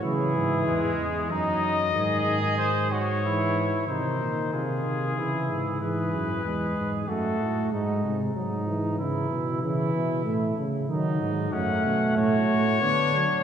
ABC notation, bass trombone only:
X:1
M:3/4
L:1/8
Q:1/4=94
K:C#phr
V:1 name="Bass trombone" clef=bass
C, G,, E,, E,, F,,2 | G,, G,,4- G,, | ^B,, ^A,, B,, B,, C, G,, | G,, F,, E,, G,, F,, A,, |
G,, ^B,, G,,2 C, =B,, | C, B,, A,, C, ^D, G,, | [K:F#m] F,, B,, A,, A,, D, z |]